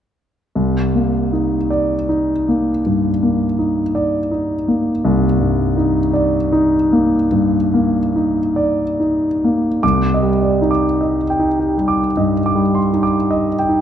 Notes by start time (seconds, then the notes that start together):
0.55 C2
0.95 A#3
1.33 D#4
1.70 D5
2.09 D#4
2.48 A#3
2.86 G2
3.23 A#3
3.59 D#4
3.95 D5
4.31 D#4
4.68 A#3
5.04 C2
5.40 G2
5.77 D#4
6.13 D5
6.52 D#4
6.92 A#3
7.32 G2
7.74 A#3
8.16 D#4
8.56 D5
9.00 D#4
9.44 A#3
9.83 C2 D6
10.14 D#5
10.23 G3
10.42 D5
10.62 D#4
10.71 D6
11.01 D#5
11.30 G5
11.40 D#4
11.60 G4
11.78 G3
11.88 D6
12.17 G2 D#5
12.46 D6
12.55 G3
12.75 C6
12.93 D#4
13.03 D6
13.31 D#5
13.59 G5
13.69 D#4